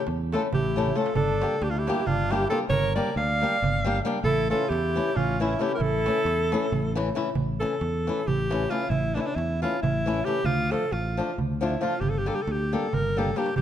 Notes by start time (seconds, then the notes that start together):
0.07 E2, darbuka tek
0.20 darbuka tek
0.32 A3 C#4 E4 F4 A4, darbuka tek
0.43 darbuka tek
0.53 A1 E4 G4, darbuka dum
0.65 darbuka tek
0.76 A3 C#4 E4 A4, darbuka dum
0.86 darbuka dum
0.95 A3 C#4 E4 F4 A4, darbuka tek
1.06 darbuka tek
1.15 G1 D4 A4, darbuka dum
1.41 G3 A#3 D4 G4, darbuka tek
1.61 D2 D4 G4, darbuka tek
1.70 D4 F4
1.77 E4 G4
1.87 G3 A#3 D4 G4, darbuka tek
2.07 G1 D4 F4, darbuka dum
2.19 darbuka tek
2.31 G3 A#3 D4 E4 G4, darbuka tek
2.50 G3 A#3 D4 F4 G4 A4, darbuka tek
2.69 G1 A#4 C#5, darbuka dum
2.95 G3 A#3 D4 G4 A#4 D5, darbuka tek
3.16 D2 D5 F5, darbuka tek
3.41 G3 A#3 D4 G4
3.62 G1, darbuka dum
3.75 darbuka tek
3.84 G3 A#3 D4 G4, darbuka tek
4.05 G3 A#3 D4 G4, darbuka tek
4.24 A1 E4 A4, darbuka dum
4.50 E3 A3 C#4 E4 F4 A4, darbuka tek
4.69 E2 E4 G4, darbuka tek
4.95 E3 A3 C#4 E4, darbuka tek
5.16 A1 C#4 F4, darbuka dum
5.30 darbuka tek
5.39 E3 A3 C#4 E4, darbuka tek
5.59 E3 A3 C#4 E4 G4, darbuka tek
5.73 G4 A#4
5.78 A1 E4, darbuka dum
5.82 A4
6.06 E3 A3 C#4 E4, darbuka tek
6.16 darbuka tek
6.25 E2, darbuka tek
6.40 darbuka tek
6.52 E3 A3 C#4 E4, darbuka tek
6.63 darbuka tek
6.72 A1, darbuka dum
6.96 E3 A3 C#4 E4, darbuka tek
7.07 darbuka tek
7.15 E3 A3 C#4 E4, darbuka tek
7.26 darbuka tek
7.35 A1, darbuka dum
7.60 E3 A3 C#4 E4 A4, darbuka tek
7.81 E2, darbuka tek
8.07 E3 A3 C#4 E4, darbuka tek
8.28 A1 G4, darbuka dum
8.50 E3 A3 C#4 E4, darbuka tek
8.61 darbuka tek
8.70 E3 A3 C#4 E4 F4, darbuka tek
8.90 A1 E4, darbuka dum
9.15 E3 A3 C#4 D4 E4, darbuka tek
9.21 E4
9.26 D4
9.36 E2 E4, darbuka tek
9.50 darbuka tek
9.62 E3 A3 C#4 E4 F4, darbuka tek
9.83 A1 E4, darbuka dum
10.06 E3 A3 C#4 E4, darbuka tek
10.18 darbuka tek
10.25 E3 A3 C#4 E4 G4, darbuka tek
10.44 D2 F4, darbuka dum
10.71 F3 A3 D4 F4 A4, darbuka tek
10.92 A1 F4, darbuka tek
11.17 F3 A3 D4 F4, darbuka tek
11.38 D2, darbuka dum
11.61 F3 A3 D4 E4 F4, darbuka tek
11.72 darbuka tek
11.81 F3 A3 D4 F4, darbuka tek
12.01 G1 G4, darbuka dum
12.10 A4
12.14 G4, darbuka tek
12.26 G3 A#3 D4 G4 A4, darbuka tek
12.35 G4
12.43 A4
12.47 D2, darbuka tek
12.52 G4
12.60 darbuka tek
12.73 G3 A#3 D4 G4 A4, darbuka tek
12.84 darbuka tek
12.93 G1 A#4, darbuka dum
13.16 G3 A#3 D4 G4 A4, darbuka dum
13.26 darbuka dum
13.36 G3 A#3 D4 G4, darbuka tek
13.46 darbuka tek
13.56 A1 G4, darbuka dum